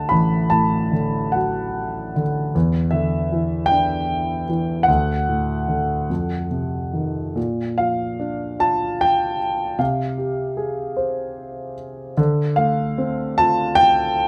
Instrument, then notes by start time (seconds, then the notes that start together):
grand piano
Already playing: A2 D3 F#3 F#5 A5
0.09 A1 B5
0.50 A2 A5
0.92 D3
1.32 F#3 F#5
2.16 D3
2.55 E2
2.91 D3 E5
3.32 E3
3.66 G5
3.71 D4
4.49 E3
4.83 F#5
4.88 D2
5.29 A2
5.68 D3
6.10 F2
6.51 C3
6.93 D#3
7.35 A#2
7.78 F3 F5
8.20 D4
8.59 F4 A5
9.01 G5
9.79 C3 F5
10.18 G4
10.57 G#4
10.97 C5
12.17 D3
12.56 A3 F5
12.98 C4
13.38 F4 A5
13.75 G5